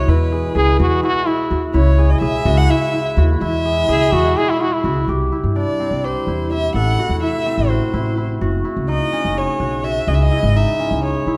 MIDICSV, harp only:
0, 0, Header, 1, 2, 480
1, 0, Start_track
1, 0, Key_signature, 4, "major"
1, 0, Tempo, 475813
1, 88, Time_signature, 7, 3, 24, 8
1, 11471, End_track
2, 0, Start_track
2, 0, Title_t, "Harp"
2, 0, Program_c, 0, 46
2, 0, Note_on_c, 0, 66, 66
2, 0, Note_on_c, 0, 68, 71
2, 83, Note_on_c, 0, 64, 81
2, 321, Note_off_c, 0, 68, 0
2, 325, Note_on_c, 0, 68, 66
2, 558, Note_off_c, 0, 68, 0
2, 562, Note_on_c, 0, 68, 79
2, 797, Note_off_c, 0, 66, 0
2, 801, Note_on_c, 0, 66, 67
2, 1036, Note_off_c, 0, 64, 0
2, 1040, Note_on_c, 0, 64, 69
2, 1276, Note_off_c, 0, 64, 0
2, 1280, Note_on_c, 0, 64, 75
2, 1517, Note_off_c, 0, 66, 0
2, 1521, Note_on_c, 0, 66, 64
2, 1749, Note_off_c, 0, 64, 0
2, 1753, Note_on_c, 0, 64, 90
2, 1996, Note_off_c, 0, 68, 0
2, 2000, Note_on_c, 0, 68, 71
2, 2236, Note_off_c, 0, 68, 0
2, 2240, Note_on_c, 0, 68, 83
2, 2473, Note_off_c, 0, 66, 0
2, 2477, Note_on_c, 0, 66, 76
2, 2721, Note_off_c, 0, 64, 0
2, 2725, Note_on_c, 0, 64, 74
2, 2961, Note_off_c, 0, 64, 0
2, 2965, Note_on_c, 0, 64, 72
2, 3201, Note_off_c, 0, 66, 0
2, 3205, Note_on_c, 0, 66, 73
2, 3440, Note_off_c, 0, 64, 0
2, 3444, Note_on_c, 0, 64, 82
2, 3682, Note_off_c, 0, 68, 0
2, 3686, Note_on_c, 0, 68, 68
2, 3921, Note_off_c, 0, 68, 0
2, 3925, Note_on_c, 0, 68, 76
2, 4163, Note_off_c, 0, 66, 0
2, 4167, Note_on_c, 0, 66, 69
2, 4404, Note_off_c, 0, 64, 0
2, 4408, Note_on_c, 0, 64, 70
2, 4643, Note_off_c, 0, 64, 0
2, 4647, Note_on_c, 0, 64, 70
2, 4882, Note_off_c, 0, 66, 0
2, 4886, Note_on_c, 0, 66, 66
2, 5130, Note_on_c, 0, 67, 78
2, 5191, Note_off_c, 0, 66, 0
2, 5191, Note_off_c, 0, 68, 0
2, 5363, Note_off_c, 0, 64, 0
2, 5367, Note_on_c, 0, 64, 58
2, 5606, Note_on_c, 0, 62, 65
2, 5848, Note_on_c, 0, 60, 64
2, 6086, Note_off_c, 0, 67, 0
2, 6090, Note_on_c, 0, 67, 67
2, 6326, Note_off_c, 0, 64, 0
2, 6330, Note_on_c, 0, 64, 67
2, 6570, Note_off_c, 0, 64, 0
2, 6574, Note_on_c, 0, 64, 65
2, 6814, Note_on_c, 0, 69, 76
2, 7053, Note_on_c, 0, 66, 63
2, 7113, Note_off_c, 0, 67, 0
2, 7281, Note_off_c, 0, 64, 0
2, 7285, Note_on_c, 0, 64, 73
2, 7521, Note_off_c, 0, 60, 0
2, 7525, Note_on_c, 0, 60, 65
2, 7764, Note_off_c, 0, 66, 0
2, 7768, Note_on_c, 0, 66, 71
2, 8000, Note_off_c, 0, 64, 0
2, 8005, Note_on_c, 0, 64, 71
2, 8242, Note_off_c, 0, 64, 0
2, 8246, Note_on_c, 0, 64, 62
2, 8430, Note_off_c, 0, 62, 0
2, 8483, Note_off_c, 0, 66, 0
2, 8487, Note_on_c, 0, 66, 81
2, 8717, Note_off_c, 0, 64, 0
2, 8721, Note_on_c, 0, 64, 64
2, 8961, Note_on_c, 0, 63, 76
2, 9021, Note_off_c, 0, 64, 0
2, 9030, Note_off_c, 0, 69, 0
2, 9204, Note_on_c, 0, 61, 70
2, 9265, Note_off_c, 0, 60, 0
2, 9448, Note_on_c, 0, 68, 70
2, 9680, Note_off_c, 0, 66, 0
2, 9684, Note_on_c, 0, 66, 70
2, 9922, Note_off_c, 0, 66, 0
2, 9926, Note_on_c, 0, 66, 62
2, 10165, Note_off_c, 0, 68, 0
2, 10169, Note_on_c, 0, 68, 79
2, 10409, Note_on_c, 0, 64, 65
2, 10470, Note_off_c, 0, 63, 0
2, 10651, Note_on_c, 0, 63, 76
2, 10711, Note_off_c, 0, 64, 0
2, 10885, Note_off_c, 0, 61, 0
2, 10889, Note_on_c, 0, 61, 64
2, 11122, Note_off_c, 0, 68, 0
2, 11126, Note_on_c, 0, 68, 71
2, 11372, Note_on_c, 0, 64, 68
2, 11433, Note_off_c, 0, 63, 0
2, 11471, Note_off_c, 0, 61, 0
2, 11471, Note_off_c, 0, 64, 0
2, 11471, Note_off_c, 0, 66, 0
2, 11471, Note_off_c, 0, 68, 0
2, 11471, End_track
0, 0, End_of_file